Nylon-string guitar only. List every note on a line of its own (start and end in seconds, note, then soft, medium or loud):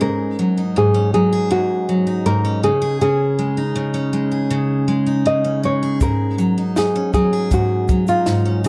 0.01 0.77 A#4 medium
0.78 1.12 G#4 medium
1.14 1.49 G#4 medium
1.52 2.29 F#4 medium
2.26 2.61 A#4 medium
2.64 3.00 G#4 medium
3.01 4.47 G#4 medium
5.27 5.65 D#5 medium
5.65 6.02 C#5 medium
6.02 6.73 A#4 medium
6.78 7.13 G#4 medium
7.14 7.49 G#4 medium
7.54 8.08 F#4 medium
8.09 8.61 F4 medium